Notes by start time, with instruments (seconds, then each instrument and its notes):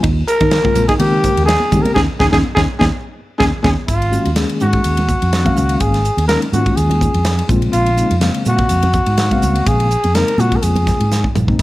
0.03 fretless electric bass D#2, clean electric guitar D#4, kick, ride
0.28 trumpet A#4, hi-hat pedal, ride
0.40 fretless electric bass D#3, clean electric guitar D#4, kick, ride, high conga
0.51 snare, ride
0.64 reed electric piano C#3 G#3 A#3 C4 F4, clean electric guitar C4, kick
0.75 fretless electric bass A#1, hi-hat pedal, ride, low conga
0.88 clean electric guitar D#4, trumpet G#4, kick, snare, ride, high conga
0.99 reed electric piano C#3 G#3 A#3 C4 A#4, fretless electric bass D#3, trumpet G4, ride, high conga
1.24 clean electric guitar C4, kick, hi-hat pedal, ride
1.37 fretless electric bass D#2, ride
1.45 clean electric guitar D#4, trumpet G#4, snare, ride
1.60 high conga
1.71 reed electric piano C#3 G#3 A#3 C4 G4, fretless electric bass D#3, clean electric guitar D#4, kick, hi-hat pedal, ride, low conga
1.82 trumpet A#4, ride, high conga
1.94 fretless electric bass D#2, reed electric piano A#3 C#4 D#4, clean electric guitar C#4 D#4 G#4, trumpet G#4, kick, snare, high conga
2.19 fretless electric bass D#2, reed electric piano A#3 C#4 D#4, clean electric guitar C#4 D#4 G#4, trumpet G#4, kick, snare, high conga
2.32 fretless electric bass D#2, reed electric piano A#3 C#4 D#4, clean electric guitar C#4 D#4 G#4, trumpet G#4, kick, snare, high conga
2.55 fretless electric bass D#2, reed electric piano A#3 C#4 D#4, clean electric guitar C#4 D#4 G#4, trumpet G#4, kick, snare, high conga
2.79 fretless electric bass D#2, reed electric piano A#3 C#4 D#4, clean electric guitar C#4 D#4 G#4, trumpet G#4, kick, snare, high conga
3.38 fretless electric bass D#2, reed electric piano A#3 C#4 D#4, clean electric guitar C#4 D#4 G#4, trumpet G#4, kick, snare, high conga
3.63 fretless electric bass D#2, reed electric piano A#3 C#4 D#4, clean electric guitar C#4 D#4 G#4, trumpet G#4, kick, snare, high conga
3.87 fretless electric bass G#1, trumpet F4, kick, hi-hat pedal, ride
4.02 ride
4.11 reed electric piano D#3 G#3 A#3 C#4 F#4, hi-hat pedal
4.25 fretless electric bass D#2, ride, high conga
4.34 reed electric piano D#3 G#3 A#3 C#4 G#4, snare, hi-hat pedal, ride
4.49 ride
4.60 fretless electric bass G#2, trumpet F#4, hi-hat pedal, high conga, low conga
4.73 kick, ride
4.84 fretless electric bass D#2, hi-hat pedal, ride
4.97 ride, high conga, low conga
5.09 kick, hi-hat pedal, high conga
5.22 fretless electric bass F2, ride
5.33 snare, hi-hat pedal, ride
5.44 reed electric piano D#3 G#3 A#3 C#4 F5, kick, ride, high conga
5.56 fretless electric bass C#2, hi-hat pedal, low conga
5.69 ride
5.80 fretless electric bass G#1, trumpet G#4, kick, hi-hat pedal, ride
5.94 snare, ride
6.05 hi-hat pedal
6.17 fretless electric bass D#2, ride, high conga
6.27 reed electric piano D#3 G#3 A#3 C#4 D#4, trumpet A#4, snare, hi-hat pedal, ride
6.42 ride
6.52 fretless electric bass G#2, reed electric piano D#3 G#3 A#3 C#4 F4, trumpet F#4, hi-hat pedal, high conga, low conga
6.66 kick, ride
6.76 fretless electric bass D#2, trumpet G#4, hi-hat pedal, ride
6.90 ride, high conga, low conga
7.01 kick, hi-hat pedal, high conga
7.14 fretless electric bass F2, ride
7.25 snare, hi-hat pedal, ride
7.39 ride
7.48 fretless electric bass A#1, reed electric piano C#3 G#3 A#3 C4 F4, kick, hi-hat pedal, low conga
7.62 ride
7.73 fretless electric bass A#1, trumpet F4, hi-hat pedal, ride
7.86 ride
7.96 reed electric piano C#3 G#3 A#3 C4 D#4, hi-hat pedal
8.11 fretless electric bass F2, ride, high conga
8.20 reed electric piano C#3 G#3 A#3 C4 F5, snare, hi-hat pedal, ride
8.34 ride
8.45 fretless electric bass A#2, trumpet F#4, hi-hat pedal, high conga, low conga
8.58 kick, ride
8.69 fretless electric bass F2, hi-hat pedal, ride
8.83 ride, high conga, low conga
8.93 kick, hi-hat pedal, high conga
9.06 fretless electric bass G#2, ride
9.18 snare, hi-hat pedal, ride
9.30 reed electric piano C#3 G#3 A#3 C4 F5, kick, ride, high conga
9.42 fretless electric bass C#2, hi-hat pedal, low conga
9.55 ride
9.67 fretless electric bass A#1, trumpet G#4, kick, hi-hat pedal, ride
9.80 ride
9.91 hi-hat pedal
10.04 fretless electric bass F2, ride, high conga
10.14 reed electric piano C#3 G#3 A#3 C4 D#4, trumpet A#4, snare, hi-hat pedal, ride
10.28 ride
10.37 fretless electric bass A#2, reed electric piano C#3 G#3 A#3 C4 F4, trumpet F#4, hi-hat pedal, high conga, low conga
10.52 kick, ride
10.56 trumpet A#4
10.62 fretless electric bass F2, trumpet G#4, hi-hat pedal, ride
10.76 ride, high conga, low conga
10.87 kick, snare, hi-hat pedal, high conga
11.00 fretless electric bass G#2, ride
11.11 snare, hi-hat pedal
11.24 kick, high conga
11.35 fretless electric bass A#1, hi-hat pedal, mid tom, low conga
11.47 reed electric piano C#3 G#3 A#3 C4 D#4, kick